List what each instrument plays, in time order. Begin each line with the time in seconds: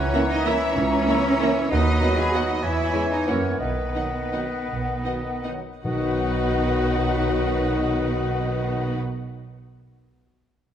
Already playing: bassoon E3, cello section C#4, violin section C#5, clarinet C#5, oboe F#5, flute section A#5
0.13 trombone section E3 A#3, viola section A#3 E4, french horn section C#4 E4, violin section E5 A#5
0.30 cello section D#4, violin section D#5
0.45 trombone section E3 A#3, viola section A#3 E4, french horn section C#4 E4, cello section E4, violin section E5 A#5, oboe E5
0.76 double bass section C#2, cello section C#4, violin section C#5
1.07 trombone section E3 A#3, viola section A#3 E4, french horn section C#4 E4, violin section E5 A#5
1.40 trombone section E3 A#3, viola section A#3 E4, french horn section C#4 E4, violin section E5 A#5
1.70 double bass section D#2, bassoon F#3, cello section D#4, clarinet B4, oboe D#5, violin section D#5, flute section B5
2.02 trombone section D#3 F#3, viola section B3 F#4, french horn section B3 F#4, violin section D#5 F#5
2.18 cello section G#4, violin section G#5
2.33 trombone section D#3 F#3, french horn section B3 F#4, viola section B3 F#4, cello section F#4, violin section D#5 F#5
2.49 cello section D#4, violin section D#5
2.63 double bass section E2, bassoon E3, cello section E4, oboe C#5, clarinet C#5, violin section E5, flute section G#5
2.93 trombone section C#3 G#3, viola section G#3 E4, french horn section C#4 E4, violin section C#5 G#5
3.11 cello section D#4, violin section D#5
3.26 double bass section F#2, trombone section C#3 F#3, french horn section A#3 E4, viola section A#3 E4, cello section C#4, clarinet A#4, violin section C#5 F#5, flute section F#5
3.59 double bass section B1, bassoon D#3, cello section B3, clarinet B4, violin section B4, oboe D#5, flute section F#5
3.93 trombone section D#3 F#3, french horn section B3 D#4, viola section B3 D#4, violin section D#5 F#5
4.32 trombone section D#3 F#3, french horn section B3 D#4, viola section B3 D#4, violin section D#5 F#5
4.68 double bass section B1
5.04 trombone section D#3 F#3, french horn section B3 D#4, viola section B3 D#4, violin section D#5 F#5
5.44 trombone section D#3 F#3, viola section B3 D#4, french horn section B3 D#4, violin section D#5 F#5
5.83 double bass section B1, timpani B2, bassoon D#3, trombone section D#3 F#3, cello section B3, viola section D#4 F#4, french horn section D#4 F#4, violin section B4 F#5, clarinet B4, oboe D#5, flute section F#5